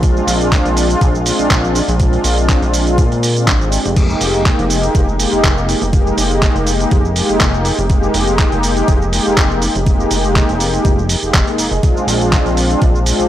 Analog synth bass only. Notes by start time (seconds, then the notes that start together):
Already playing: A#1
0.27 A#1
0.65 A#1
1.01 A#1
1.39 A#1
1.51 A#1
1.88 A#1
2.24 A#1
2.62 A#1
2.98 A#2
3.47 G#1
3.85 F1
4.21 F1
4.59 F1
4.95 F1
5.33 F1
5.44 F1
5.82 F1
6.17 F1
6.56 F1
6.91 F1
7.29 F1
7.40 F1
7.79 F1
8.14 F1
8.53 F1
8.88 F1
9.26 F1
9.37 F1
9.75 F1
10.11 F1
10.49 F1
10.85 F1
11.22 F1
11.34 F1
11.58 F1
11.71 F1
12.07 A#1
12.45 A#1
12.82 A#1
13.19 A#1